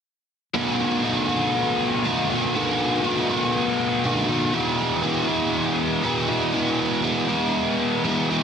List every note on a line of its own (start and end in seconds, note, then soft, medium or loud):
0.54 1.34 B2 medium
0.54 1.03 D#3 medium
0.54 1.04 A3 medium
0.54 1.05 B3 medium
0.54 1.05 F#4 medium
1.04 1.54 D#3 medium
1.04 1.30 A3 medium
1.04 1.29 B3 medium
1.04 1.28 F#4 medium
1.29 2.04 A3 soft
1.29 2.06 B3 medium
1.29 2.05 F#4 medium
2.04 2.53 B2 medium
2.04 2.54 D#3 medium
2.04 2.31 A3 medium
2.04 2.31 B3 medium
2.04 2.29 F#4 medium
2.30 2.54 A3 medium
2.30 2.56 B3 medium
2.30 2.55 F#4 medium
2.55 3.30 B2 medium
2.55 3.03 D#3 medium
2.55 3.04 A3 medium
2.55 3.05 B3 medium
2.55 3.05 F#4 medium
3.04 3.54 D#3 medium
3.04 3.31 A3 medium
3.04 3.31 B3 medium
3.04 3.29 F#4 medium
3.30 4.04 A3 soft
3.30 4.06 B3 medium
3.30 4.05 F#4 medium
4.04 4.52 B2 medium
4.04 4.53 D#3 medium
4.04 4.30 A3 medium
4.04 4.30 B3 medium
4.04 4.28 F#4 medium
4.29 4.54 A3 medium
4.29 4.54 B3 medium
4.29 4.53 F#4 medium
4.53 6.03 E2 medium
4.53 5.29 B2 medium
4.53 5.03 E3 medium
4.53 5.03 G#3 medium
4.53 5.04 B3 medium
4.53 5.04 E4 medium
5.03 5.30 E3 medium
5.03 5.29 G#3 medium
5.03 5.28 B3 medium
5.03 5.28 E4 medium
5.28 6.03 E3 medium
5.28 6.03 G#3 medium
5.28 6.05 B3 medium
5.28 6.04 E4 medium
6.03 6.52 E2 medium
6.03 6.52 B2 medium
6.03 6.30 E3 medium
6.03 6.29 G#3 medium
6.03 6.29 B3 medium
6.03 6.27 E4 medium
6.29 6.53 E3 medium
6.29 6.53 G#3 medium
6.29 6.54 B3 medium
6.29 6.54 E4 medium
6.53 7.29 E2 medium
6.53 7.29 B2 medium
6.53 7.01 E3 medium
6.53 7.03 G#3 medium
6.53 7.04 B3 medium
6.53 7.04 E4 medium
7.03 7.28 E3 medium
7.03 7.28 G#3 medium
7.03 7.28 B3 medium
7.03 7.27 E4 medium
7.28 8.04 E3 medium
7.28 8.04 G#3 soft
7.28 8.05 B3 medium
7.28 8.04 E4 medium
8.04 8.43 E2 medium
8.04 8.43 B2 medium
8.04 8.30 E3 medium
8.04 8.30 G#3 medium
8.04 8.30 B3 medium
8.04 8.28 E4 medium
8.29 8.43 E3 medium
8.29 8.43 G#3 medium
8.29 8.43 B3 medium
8.29 8.43 E4 medium